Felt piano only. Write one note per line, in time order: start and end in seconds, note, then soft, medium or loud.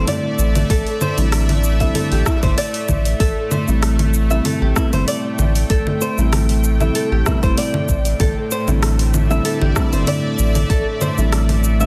0.00 1.13 D3 medium
0.00 1.13 G3 medium
0.00 1.14 A3 medium
0.00 1.14 C4 medium
0.00 1.15 E4 medium
1.17 1.76 D3 medium
1.17 1.76 G3 medium
1.17 1.76 A3 medium
1.17 1.77 C4 medium
1.17 1.77 E4 medium
1.79 2.22 D3 medium
1.79 2.23 G3 medium
1.79 2.23 A3 medium
1.79 2.23 C4 medium
1.79 2.23 E4 medium
3.67 4.26 C3 medium
3.67 4.26 G3 medium
3.67 4.26 A3 medium
3.67 4.27 E4 medium
4.30 4.73 C3 medium
4.30 4.73 G3 medium
4.30 4.73 A3 medium
4.30 4.73 E4 medium
4.75 4.88 C3 medium
4.75 4.89 G3 medium
4.75 4.89 A3 medium
4.75 4.89 B3 medium
4.75 4.89 E4 loud
4.91 6.13 C3 medium
4.91 6.14 G3 medium
4.91 6.14 A3 medium
4.91 6.15 E4 medium
6.17 6.76 C3 medium
6.17 6.76 G3 medium
6.17 6.77 A3 medium
6.17 6.77 E4 medium
6.80 7.22 C3 medium
6.80 7.23 G3 medium
6.80 7.23 A3 medium
6.80 7.23 E4 medium
7.25 7.38 C3 medium
7.25 7.39 G3 medium
7.25 7.39 A3 medium
7.25 7.39 B3 medium
7.25 7.39 E4 loud
7.41 8.17 C3 medium
7.41 8.18 G3 medium
7.41 8.18 A3 medium
7.45 8.19 E4 medium
8.67 9.26 D3 medium
8.67 9.26 G3 medium
8.67 9.26 A3 medium
8.67 9.27 C4 medium
8.67 9.27 E4 medium
9.30 9.72 D3 medium
9.30 9.73 G3 medium
9.30 9.73 A3 medium
9.30 9.73 C4 medium
9.30 9.73 E4 loud
9.75 9.88 D3 medium
9.75 9.89 G3 medium
9.75 9.89 A3 medium
9.75 9.89 C4 medium
9.75 9.89 E4 loud
9.91 11.13 D3 medium
9.91 11.14 G3 medium
9.91 11.14 A3 medium
9.91 11.15 C4 medium
9.95 11.15 E4 medium
11.17 11.76 D3 medium
11.17 11.76 G3 medium
11.17 11.76 A3 medium
11.17 11.77 C4 medium
11.17 11.77 E4 medium
11.80 11.86 D3 medium
11.80 11.86 G3 medium
11.80 11.86 A3 medium
11.80 11.86 C4 medium
11.80 11.86 E4 medium